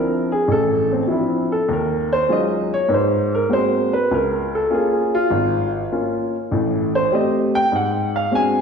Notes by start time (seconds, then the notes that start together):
Already playing: F3 C4 D4 E4 A#4
0.32 G#4
0.48 A1 A4
0.92 C4
1.07 F3 C4 D4 E4
1.12 E4
1.52 A4
1.69 D#2
1.73 A#4
2.13 C5
2.29 F#3 G#3 C#4 D#4 F4 D#5
2.74 C#5
2.89 G#2 B4
2.94 C5
3.35 A#4
3.49 G#3 A#3 C4 F#4 C5
3.93 B4
4.11 C#2 A#4
4.55 A4
4.70 A#3 C#4 F4
4.74 G#4
5.15 F4
5.31 G#1
5.92 A#3 C#4 F4
6.51 A1 A2
6.95 C5
7.11 A3 C4 G4 D5
7.15 D#5
7.55 G5
7.72 G#2 F#5
8.16 F5
8.31 G#3 C4 D4 F#4 G#5